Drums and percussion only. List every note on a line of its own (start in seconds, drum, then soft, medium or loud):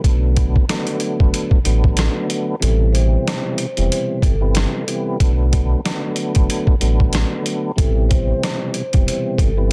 0.04 kick loud
0.04 closed hi-hat medium
0.36 kick loud
0.36 closed hi-hat medium
0.56 kick loud
0.69 cross-stick medium
0.69 snare loud
0.69 closed hi-hat loud
0.87 closed hi-hat medium
1.00 closed hi-hat medium
1.20 kick medium
1.34 closed hi-hat medium
1.51 kick medium
1.65 closed hi-hat medium
1.84 kick medium
1.97 cross-stick medium
1.97 snare loud
1.97 closed hi-hat medium
2.30 closed hi-hat medium
2.62 closed hi-hat medium
2.95 closed hi-hat medium
3.27 cross-stick medium
3.27 snare loud
3.27 closed hi-hat loud
3.58 closed hi-hat medium
3.77 closed hi-hat soft
3.92 closed hi-hat medium
4.22 kick loud
4.22 closed hi-hat medium
4.55 cross-stick medium
4.55 snare loud
4.55 closed hi-hat medium
4.88 closed hi-hat medium
5.20 kick loud
5.20 closed hi-hat loud
5.53 kick loud
5.53 closed hi-hat medium
5.85 cross-stick medium
5.85 snare loud
5.85 closed hi-hat loud
6.16 closed hi-hat medium
6.35 kick medium
6.35 closed hi-hat soft
6.50 closed hi-hat medium
6.67 kick medium
6.81 closed hi-hat medium
7.00 kick medium
7.13 cross-stick medium
7.13 snare loud
7.13 closed hi-hat medium
7.46 closed hi-hat medium
7.78 kick loud
7.78 closed hi-hat loud
8.11 kick loud
8.11 closed hi-hat medium
8.43 cross-stick medium
8.43 snare loud
8.43 closed hi-hat loud
8.74 closed hi-hat medium
8.93 kick loud
8.93 closed hi-hat soft
9.08 closed hi-hat medium
9.38 kick loud
9.38 closed hi-hat medium